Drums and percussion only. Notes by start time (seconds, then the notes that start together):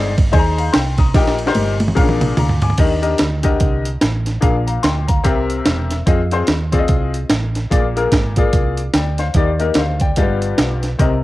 0.18 kick, ride
0.33 kick, ride
0.58 ride
0.74 snare, ride
0.98 kick, snare, ride
1.14 kick, snare, ride
1.27 snare
1.39 ride
1.47 snare
1.55 high tom, ride
1.80 high tom, ride
1.88 mid tom
1.97 kick, ride
2.09 mid tom
2.21 mid tom, ride
2.37 mid tom, ride
2.49 floor tom
2.62 floor tom, ride
2.70 floor tom
2.78 kick, closed hi-hat, crash
3.03 closed hi-hat
3.18 snare, closed hi-hat
3.43 kick, closed hi-hat
3.60 kick, closed hi-hat
3.85 closed hi-hat
4.01 snare, closed hi-hat
4.26 snare, closed hi-hat
4.42 kick, closed hi-hat
4.68 closed hi-hat
4.83 snare, closed hi-hat
5.09 kick, closed hi-hat
5.24 kick, closed hi-hat
5.50 closed hi-hat
5.65 snare, closed hi-hat
5.90 snare, closed hi-hat
6.07 kick, closed hi-hat
6.31 closed hi-hat
6.47 snare, closed hi-hat
6.72 kick, closed hi-hat
6.88 kick, closed hi-hat
7.14 closed hi-hat
7.29 snare, closed hi-hat
7.55 snare, closed hi-hat
7.71 kick, closed hi-hat
7.97 closed hi-hat
8.12 kick, snare, closed hi-hat
8.36 kick, closed hi-hat
8.53 kick, closed hi-hat
8.77 closed hi-hat
8.94 snare, closed hi-hat
9.18 snare, closed hi-hat
9.34 kick, closed hi-hat
9.60 closed hi-hat
9.74 snare, closed hi-hat
10.00 kick, closed hi-hat
10.16 kick, closed hi-hat
10.42 closed hi-hat
10.58 snare, closed hi-hat
10.83 snare, closed hi-hat
10.99 kick, closed hi-hat